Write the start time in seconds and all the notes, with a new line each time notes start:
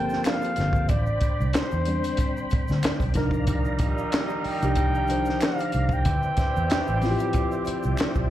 Already playing: G1 F3 A#3 C4 F4 G4 A4 A#4 C5 G5 A5
0.09 snare, shaker
0.24 F5, finger snap, snare, clap, closed hi-hat, shaker
0.42 closed hi-hat, shaker
0.56 G1, snare, closed hi-hat, shaker
0.73 kick, shaker
0.89 A1 D4 D5 G5 B5, kick, closed hi-hat, shaker
1.06 shaker
1.21 kick, closed hi-hat, shaker
1.40 C2, shaker
1.53 C5, finger snap, muted fingered electric bass stroke, snare, clap, closed hi-hat, shaker
1.71 E2, shaker
1.86 G3 C4 D4 C5, closed hi-hat
2.04 closed hi-hat, shaker
2.17 kick, closed hi-hat, shaker
2.37 shaker
2.50 muted fingered electric bass stroke, kick, closed hi-hat, shaker
2.68 D2, snare, shaker
2.83 finger snap, muted fingered electric bass stroke, snare, clap, closed hi-hat, shaker
3.00 B1, kick, closed hi-hat, shaker
3.14 C2 D#3 F3 D4 D#4 A#4 D5 F5 A#5, kick, snare, closed hi-hat, shaker
3.31 kick, shaker
3.47 A#2 G3 D#4, kick, closed hi-hat, shaker
3.65 shaker
3.79 kick, closed hi-hat, shaker
3.98 shaker
4.12 finger snap, snare, clap, closed hi-hat, shaker
4.29 shaker
4.44 G5, muted fingered electric bass stroke, open hi-hat
4.62 C2 F3 D4 D#4 G4, closed hi-hat, shaker
4.75 kick, closed hi-hat, shaker
4.95 shaker
5.07 F3 D4 D#4 C5, closed hi-hat, shaker
5.25 snare, shaker
5.41 F5, finger snap, snare, clap, closed hi-hat, shaker
5.58 closed hi-hat, shaker
5.72 C2, closed hi-hat, shaker
5.89 kick, shaker
5.93 G5
6.05 D2 E3 C4 G4 C5 D5 E5 G5, kick, closed hi-hat, shaker
6.23 shaker
6.37 kick, snare, closed hi-hat, shaker
6.56 E2, shaker
6.70 finger snap, muted fingered electric bass stroke, snare, clap, closed hi-hat, shaker
6.87 A1, shaker
7.02 F3 C4 E4 F4, snare, open hi-hat, shaker
7.11 G4
7.19 closed hi-hat, shaker
7.33 kick, closed hi-hat, shaker
7.52 shaker
7.65 muted fingered electric bass stroke, closed hi-hat, shaker
7.83 C2, shaker
7.97 finger snap, snare, clap, closed hi-hat, shaker
8.15 B1, kick, shaker